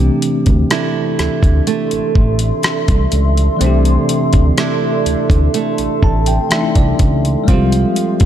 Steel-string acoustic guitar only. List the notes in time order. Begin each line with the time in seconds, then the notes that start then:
Already playing: C3
0.70 A3 D4 E4
1.67 A3
3.61 C3
4.57 A3 D4 E4
5.54 A3
7.48 F3